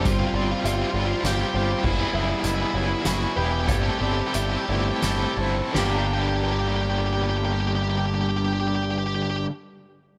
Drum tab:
CC |------|x-----|------|x-----|
HH |x-x-x-|--x-x-|x-x-x-|------|
SD |----o-|----o-|----o-|o-----|
BD |o-----|o-----|o-----|------|

CC |------|
HH |------|
SD |------|
BD |------|